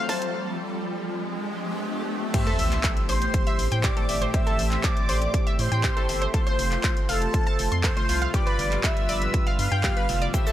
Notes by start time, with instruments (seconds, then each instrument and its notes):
Already playing: ambient pad F3 A3 C4 A4, analog polysynth A3 F4 C5, riser
0.09 synth pluck A5, kick, open hi-hat
0.22 closed hi-hat
0.34 ambient pad B3 D4 G4
2.34 analog polysynth A2 A3 G4 C5, ambient pad E3 A3 C4 G4, synth pluck G4, analog synth lead E5, supersaw synth E6, kick, closed hi-hat, crash, sub drop
2.47 synth pluck A4, closed hi-hat
2.59 analog synth bass A1, open hi-hat
2.71 clap, closed hi-hat
2.84 kick, clap, closed hi-hat
2.97 closed hi-hat
3.09 analog synth bass A1, synth pluck C5, analog synth lead C5, supersaw synth C6, open hi-hat
3.22 closed hi-hat
3.34 kick, closed hi-hat
3.47 synth pluck E5, closed hi-hat
3.59 analog synth bass A1, open hi-hat
3.72 analog synth bass A2, synth pluck G5, closed hi-hat
3.84 synth pluck G4, analog synth lead D5, supersaw synth D6, kick, clap, closed hi-hat
3.97 analog polysynth A2 A3 G4 C5, synth pluck A4, closed hi-hat
4.09 analog synth bass G1, analog polysynth A2 A3 G4 E5, open hi-hat
4.22 synth pluck C5, closed hi-hat
4.34 analog polysynth A2 A3 G4 C5, synth pluck G4, analog synth lead E5, supersaw synth E6, kick, closed hi-hat
4.47 synth pluck A4, closed hi-hat
4.59 analog synth bass A1, open hi-hat
4.71 clap, closed hi-hat
4.84 analog synth lead D5, supersaw synth D6, kick, clap, closed hi-hat
4.97 closed hi-hat
5.09 analog synth bass A1, synth pluck C5, open hi-hat
5.22 closed hi-hat
5.34 kick, closed hi-hat
5.47 synth pluck E5, closed hi-hat
5.59 analog synth bass A2, analog synth lead C5, supersaw synth C6, open hi-hat
5.72 analog synth bass A2, synth pluck G5, closed hi-hat
5.84 synth pluck G4, kick, clap, closed hi-hat
5.97 analog polysynth A2 A3 G4 C5, synth pluck A4, closed hi-hat
6.09 analog synth bass G1, analog polysynth A3 G4 E5, open hi-hat
6.22 synth pluck C5, closed hi-hat
6.34 ambient pad C3 F3 F4, analog polysynth A3 F4 C5, synth pluck A4, analog synth lead C5, supersaw synth C6, kick, closed hi-hat
6.47 synth pluck C5, closed hi-hat
6.59 analog synth bass F1, open hi-hat
6.71 clap, closed hi-hat
6.84 kick, clap, closed hi-hat
6.97 closed hi-hat
7.09 analog synth bass F1, analog synth lead A4, synth pluck F5, supersaw synth A5, open hi-hat
7.22 closed hi-hat
7.34 kick, closed hi-hat
7.47 synth pluck A5, closed hi-hat
7.59 analog synth bass F1, open hi-hat
7.72 analog synth bass F2, synth pluck C6, closed hi-hat
7.84 synth pluck A4, analog synth lead C5, supersaw synth C6, kick, clap, closed hi-hat
7.97 analog polysynth A3 F4 C5, synth pluck C5, closed hi-hat
8.09 analog synth bass C2, analog polysynth A3 F4 F5, open hi-hat
8.22 synth pluck F5, closed hi-hat
8.34 analog polysynth G2 G3 F4 B4, ambient pad D3 G3 B3, synth pluck G4, analog synth lead D5, supersaw synth D6, kick, closed hi-hat
8.47 synth pluck B4, closed hi-hat
8.59 analog synth bass G1, open hi-hat
8.71 clap, closed hi-hat
8.84 analog synth lead E5, supersaw synth E6, kick, clap, closed hi-hat
8.97 closed hi-hat
9.09 analog synth bass G1, synth pluck D5, open hi-hat
9.22 closed hi-hat
9.34 kick, closed hi-hat
9.47 synth pluck F5, closed hi-hat
9.59 analog synth bass G2, analog synth lead F5, supersaw synth F6, open hi-hat
9.72 analog synth bass G2, synth pluck G5, closed hi-hat
9.84 analog polysynth G2 G3 F4 B4, synth pluck G4, kick, clap, closed hi-hat
9.97 synth pluck B4, closed hi-hat
10.09 analog synth bass F1, analog polysynth A2 G3 F4 E5, open hi-hat
10.22 synth pluck D5, closed hi-hat
10.34 analog polysynth A2 A3 G4 C5, ambient pad C3 A3 E4, synth pluck G4, analog synth lead E5, supersaw synth E6, kick, closed hi-hat, cabasa
10.47 synth pluck A4, closed hi-hat, cabasa